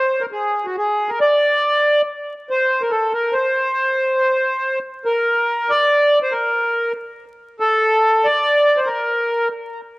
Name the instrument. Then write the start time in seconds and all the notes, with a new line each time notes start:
accordion
Already playing: C5
0.21 A#4
0.32 G#4
0.65 F#4
0.78 G#4
1.09 A#4
1.21 D5
2.50 C5
2.81 A#4
2.90 A4
3.13 A#4
3.32 C5
5.05 A#4
5.70 D5
6.23 C5
6.32 A#4
7.60 A4
8.25 D5
8.77 C5
8.86 A#4